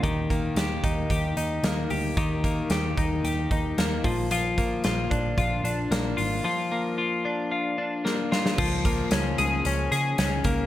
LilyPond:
<<
  \new Staff \with { instrumentName = "Clean electric guitar" } { \time 4/4 \key ees \major \tempo 4 = 112 <ees g'>8 bes8 g'8 ees'8 g'8 ees'8 bes8 g'8 | <ees g'>8 bes8 g'8 ees'8 g'8 ees'8 bes8 f8 | <f f'>8 bes8 f'8 d'8 f'8 d'8 bes8 f'8 | <f f'>8 bes8 f'8 d'8 f'8 d'8 bes8 f'8 |
f8 bes8 des'8 aes'8 des'8 aes'8 des'8 bes8 | }
  \new Staff \with { instrumentName = "Picked electric bass" } { \clef bass \time 4/4 \key ees \major ees,4 ees,8 ees,8 ees,8 ees,8 ees,8 d,8 | ees,4 ees,8 ees,8 ees,8 ees,8 ees,8 bes,,8~ | bes,,4 bes,,8 bes,,8 bes,,8 bes,,8 bes,,8 aes,,8 | r1 |
des,4 des,8 des,8 des,8 des8 des,8 des,8 | }
  \new DrumStaff \with { instrumentName = "Drums" } \drummode { \time 4/4 <hh bd>8 <hh bd>8 <hh sn>8 <hh bd>8 <hh bd>8 hh8 <hh sn>8 hho8 | <hh bd>8 <hh bd>8 <hh sn>8 <hh bd>8 hh8 <hh bd>8 <hh sn>8 <hho bd>8 | hh8 <hh bd>8 <hh sn>8 <hh bd>8 <hh bd>8 hh8 <hh sn>8 hho8 | r4 r4 r4 sn8 sn16 sn16 |
<cymc bd>8 <hh bd>8 <hh sn>8 hh8 hh8 hh8 <hh sn>8 <hh bd>8 | }
>>